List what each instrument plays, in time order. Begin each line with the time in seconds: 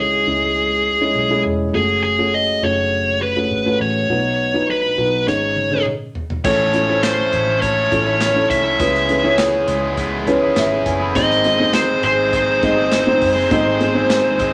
Already playing: fingered electric bass C#2, felt piano C#3 G#3 C#4 E4 F#4 G#4
0.00 lead electric guitar G#4
0.27 fingered electric bass C#2, felt piano G#3 C#4 E4 G#4
1.01 felt piano G#3 C#4 E4 G#4
1.15 fingered electric bass B1
1.30 felt piano G#3 C#4 E4 G#4
1.45 fingered electric bass E1
1.74 fingered electric bass F#1, felt piano A3 C#4 F#4 G#4, lead electric guitar G#4
2.03 lead electric guitar G#4
2.18 felt piano A3 C#4 F#4 G#4
2.34 lead electric guitar D#5
2.62 fingered electric bass F#1, felt piano A3 C#4 F#4 G#4, lead electric guitar C#5
3.23 lead electric guitar B4
3.36 felt piano A3 C#4 F#4 G#4
3.51 fingered electric bass G#1
3.65 felt piano A3 C#4 F#4 B4
3.80 fingered electric bass A1, lead electric guitar C#5
4.09 fingered electric bass B1, felt piano B2 B3 D#4 F#4 B4
4.54 felt piano B3 D#4 F#4 B4
4.70 lead electric guitar B4
4.98 fingered electric bass B1, felt piano B3 D#4 F#4 B4
5.27 fingered electric bass G#1, felt piano G#2 C#4 D#4 G#4 C#5, lead electric guitar C#5, snare
5.56 high tom
5.71 felt piano C#4 D#4 G#4 C#5, high tom
5.86 mid tom
6.15 floor tom
6.30 floor tom
6.44 fingered electric bass A1, overdriven electric guitar A2 E3 A3 C#4 E4 A4, felt piano A2 C#4 E4 A4 C#5, lead electric guitar C#5, kick, crash
6.73 felt piano C#4 E4 A4 C#5, closed hi-hat
6.88 overdriven electric guitar A3 C#4 E4 A4, felt piano C#4 E4 A4 C5
7.03 lead electric guitar C5, snare, clap, closed hi-hat
7.32 fingered electric bass A1, overdriven electric guitar A3 C#4 E4 A4, closed hi-hat
7.61 overdriven electric guitar A3 C#4 E4 A4, lead electric guitar C#5, kick, closed hi-hat
7.92 fingered electric bass A1, felt piano C#4 E4 A4 C#5, kick, closed hi-hat
8.06 overdriven electric guitar A3 C#4 E4 A4
8.20 snare, clap, closed hi-hat
8.36 felt piano C#4 E4 A4 C#5
8.50 fingered electric bass C2, lead electric guitar E5, kick, closed hi-hat
8.64 overdriven electric guitar A3 C#4 E4 A4
8.79 fingered electric bass C#2, overdriven electric guitar C#3 G#3 B3 E4 G#4, felt piano C#3 C#4 E4 G#4 B4, kick, closed hi-hat
8.95 snare
9.09 felt piano C#4 E4 G#4 B4, closed hi-hat
9.23 overdriven electric guitar B3 E4 G#4, felt piano C#4 E4 G#4 C#5
9.38 snare, clap, closed hi-hat
9.67 fingered electric bass C#2, overdriven electric guitar G#3 B3 E4 G#4, closed hi-hat
9.97 overdriven electric guitar G#3 B3 E4 G#4, kick, closed hi-hat
10.27 felt piano C#4 E4 G#4 B4, kick, closed hi-hat
10.41 overdriven electric guitar B3 E4 G#4
10.56 fingered electric bass G#1, felt piano E5, snare, clap, closed hi-hat
10.86 fingered electric bass F#1, felt piano G#5, kick, closed hi-hat
11.00 overdriven electric guitar B3 E4 G#4, felt piano B5
11.15 fingered electric bass G#1, overdriven electric guitar G#2 D#3 G#3 C4 D#4 G#4, felt piano G#2 C4 D#4 G#4 C5, lead electric guitar D#5, kick, closed hi-hat
11.30 snare
11.44 felt piano C4 D#4 G#4 D#5, closed hi-hat
11.59 overdriven electric guitar G#3 C4 D#4 G#4, felt piano C4 D#4 G#4 C5
11.74 lead electric guitar C5, snare, clap, closed hi-hat
12.03 fingered electric bass G#1, overdriven electric guitar G#3 C4 D#4 G#4, lead electric guitar C5, closed hi-hat
12.33 overdriven electric guitar G#3 C4 D#4 G#4, kick, closed hi-hat
12.63 fingered electric bass G#1, felt piano C4 D#4 G#4 D#5, kick, closed hi-hat
12.77 overdriven electric guitar G#3 C4 D#4 G#4
12.92 snare, clap, closed hi-hat
13.07 felt piano C4 D#4 G#4 C5
13.22 fingered electric bass F#1, kick, open hi-hat
13.36 overdriven electric guitar G#3 C4 D#4 G#4
13.51 fingered electric bass G#1, overdriven electric guitar G#2 D#3 G#3 C4 D#4 G#4, felt piano G#2 C4 D#4 G#4 D#5, kick, closed hi-hat
13.80 felt piano C4 D#4 G#4 C5, closed hi-hat
13.94 overdriven electric guitar G#3 C4 D#4 G#4, felt piano C4 D#4 G#4 C5
14.10 snare, clap, closed hi-hat
14.38 fingered electric bass G#1, overdriven electric guitar G#3 C4 D#4 G#4, kick, closed hi-hat